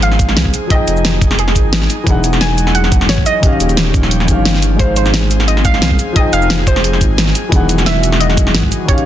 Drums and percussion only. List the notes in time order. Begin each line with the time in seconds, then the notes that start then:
0.02 closed hi-hat
0.12 snare
0.19 kick, closed hi-hat, cabasa
0.29 snare
0.37 snare, closed hi-hat
0.45 kick
0.54 closed hi-hat, cabasa
0.70 kick, closed hi-hat
0.88 closed hi-hat, cabasa
0.97 cabasa
1.05 snare, closed hi-hat
1.21 kick, closed hi-hat, cabasa
1.31 snare
1.39 closed hi-hat
1.48 snare
1.56 kick, closed hi-hat, cabasa
1.73 snare, closed hi-hat
1.82 snare
1.90 closed hi-hat, cabasa
2.07 kick, closed hi-hat
2.24 closed hi-hat, cabasa
2.33 snare, cabasa
2.41 snare, closed hi-hat
2.58 closed hi-hat, cabasa
2.67 snare
2.75 closed hi-hat
2.84 snare
2.92 kick, closed hi-hat, cabasa
3.01 snare
3.09 snare, closed hi-hat
3.18 kick
3.26 closed hi-hat, cabasa
3.43 kick, closed hi-hat
3.60 closed hi-hat, cabasa
3.69 closed hi-hat, cabasa
3.77 snare, closed hi-hat
3.94 kick, closed hi-hat, cabasa
4.03 snare
4.11 closed hi-hat
4.20 snare
4.28 kick, closed hi-hat, cabasa
4.45 snare, closed hi-hat
4.55 snare
4.62 closed hi-hat, cabasa
4.79 kick, closed hi-hat
4.96 closed hi-hat, cabasa
5.06 snare, cabasa
5.14 snare, closed hi-hat
5.31 closed hi-hat, cabasa
5.40 snare
5.48 closed hi-hat
5.57 snare
5.65 kick, closed hi-hat, cabasa
5.74 snare
5.82 snare, closed hi-hat
5.91 kick
5.99 closed hi-hat, cabasa
6.16 kick, closed hi-hat
6.33 closed hi-hat, cabasa
6.42 cabasa
6.50 snare, closed hi-hat
6.67 kick, closed hi-hat, cabasa
6.76 snare
6.84 closed hi-hat
6.93 snare
7.01 kick, closed hi-hat, cabasa
7.18 snare, closed hi-hat
7.27 snare
7.35 closed hi-hat, cabasa
7.52 kick, closed hi-hat
7.69 closed hi-hat, cabasa
7.78 snare, cabasa
7.86 snare, closed hi-hat
8.03 closed hi-hat, cabasa
8.12 snare
8.21 closed hi-hat
8.30 snare
8.37 kick, closed hi-hat, cabasa
8.47 snare
8.55 snare, closed hi-hat
8.63 kick
8.72 closed hi-hat, cabasa
8.89 kick, closed hi-hat
8.98 closed hi-hat